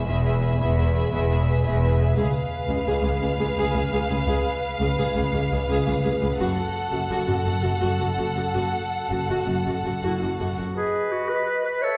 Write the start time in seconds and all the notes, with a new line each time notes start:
0.06 E1 E2 G#4 B4 E5
0.24 G#4 B4 E5
0.41 G#4 B4 E5
0.59 E1 E2 G#4 B4 E5
0.77 G#4 B4 E5
0.94 G#4 B4 E5
1.11 E1 E2 G#4 B4 E5
1.29 G#4 B4 E5
1.47 G#4 B4 E5
1.64 E1 E2 G#4 B4 E5
1.82 G#4 B4 E5
1.99 G#4 B4 E5
2.16 C#2 G#4 B4 F5
2.69 C#2 G#4
2.86 C#2 G#4
3.04 C#2 G#4
3.22 C#2 G#4
3.39 C#2 G#4
3.57 C#2 G#4
3.74 C#2 G#4
3.92 C#2 G#4
4.09 C#2 G#4
4.27 C#2 G#4
4.80 C#2 G#4
4.98 C#2 G#4
5.16 C#2 G#4
5.33 C#2 G#4
5.51 C#2 G#4
5.69 C#2 G#4
5.86 C#2 G#4
6.04 C#2 G#4
6.22 C#2 G#4
6.40 F#1 F#2 F#4 A4 F#5
6.92 F#1 F#2 F#4
7.09 F#1 F#2 F#4
7.28 F#1 F#2 F#4
7.45 F#1 F#2 F#4
7.63 F#1 F#2 F#4
7.80 F#1 F#2 F#4
8.00 F#1 F#2 F#4
8.18 F#1 F#2 F#4
8.36 F#1 F#2 F#4
8.54 F#1 F#2 F#4
9.10 F#1 F#2 F#4
9.28 F#1 F#2 F#4
9.47 F#1 F#2 F#4
9.66 F#1 F#2 F#4
9.85 F#1 F#2 F#4
10.02 F#1 F#2 E4 F#4
10.20 F#1 F#2 F#4
10.40 F#1 F#2 F#4
10.58 F#1 F#2 F#4
10.76 G#4 B4 D#5
11.12 F#4
11.29 B4
11.65 B4
11.82 A4 C#5 E5